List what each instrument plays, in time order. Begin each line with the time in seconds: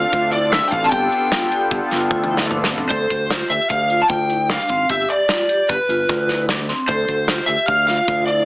Already playing: analog synth pad C4 D4 F4 A4, lead electric guitar F5
0.12 fingered electric bass D2, vibraphone F4, kick, closed hi-hat
0.32 vibraphone E4, lead electric guitar D5, closed hi-hat
0.52 vibraphone D4, lead electric guitar E5, snare, closed hi-hat
0.68 lead electric guitar F5 G5
0.72 fingered electric bass A1, vibraphone C4, kick, closed hi-hat
0.84 lead electric guitar A5
0.90 fingered electric bass G1, analog synth pad B3 D4 F4 A4, vibraphone G4, lead electric guitar G5, kick, closed hi-hat
1.12 closed hi-hat
1.32 vibraphone F4, snare, closed hi-hat
1.51 vibraphone G4, closed hi-hat
1.71 fingered electric bass G1, kick, closed hi-hat
1.91 fingered electric bass G1, vibraphone F4, snare, closed hi-hat
2.10 fingered electric bass D2, vibraphone F4, kick
2.24 high tom
2.31 vibraphone E4
2.37 snare
2.51 vibraphone D4, mid tom
2.64 snare
2.70 vibraphone C4
2.78 floor tom
2.89 fingered electric bass D2, vibraphone A4, lead electric guitar C5, kick, closed hi-hat
3.10 fingered electric bass D2, kick, closed hi-hat
3.30 vibraphone F4, snare, closed hi-hat
3.50 fingered electric bass D2, vibraphone G4, lead electric guitar E5, closed hi-hat
3.70 fingered electric bass D2, lead electric guitar F5, kick, closed hi-hat
3.90 vibraphone F4, closed hi-hat
4.02 lead electric guitar A5
4.09 fingered electric bass D2, vibraphone F4, lead electric guitar G5, kick, closed hi-hat
4.30 vibraphone E4, closed hi-hat
4.50 vibraphone D4, lead electric guitar F5, snare, closed hi-hat
4.69 fingered electric bass G#1, vibraphone C4, kick, closed hi-hat
4.89 fingered electric bass G1, vibraphone G4, lead electric guitar E5, kick, closed hi-hat
5.10 lead electric guitar D5, closed hi-hat
5.29 vibraphone F4, snare, closed hi-hat
5.49 vibraphone G4, closed hi-hat
5.69 fingered electric bass G1, lead electric guitar B4, kick, closed hi-hat
5.89 fingered electric bass G1, vibraphone F4, closed hi-hat
6.09 fingered electric bass D2, vibraphone F4, kick, snare, closed hi-hat
6.29 vibraphone E4, snare, closed hi-hat
6.49 vibraphone D4, snare, closed hi-hat
6.69 vibraphone C4, snare, closed hi-hat
6.88 fingered electric bass D2, vibraphone A4, lead electric guitar C5, kick, closed hi-hat
7.08 fingered electric bass D2, kick, closed hi-hat
7.28 vibraphone F4, snare, closed hi-hat
7.46 fingered electric bass D2, vibraphone G4, lead electric guitar E5, closed hi-hat
7.66 fingered electric bass D2, lead electric guitar F5, kick, closed hi-hat
7.87 vibraphone F4, lead electric guitar F5, snare, closed hi-hat
8.08 fingered electric bass D2, vibraphone F4, kick, closed hi-hat
8.26 vibraphone E4, lead electric guitar D5, closed hi-hat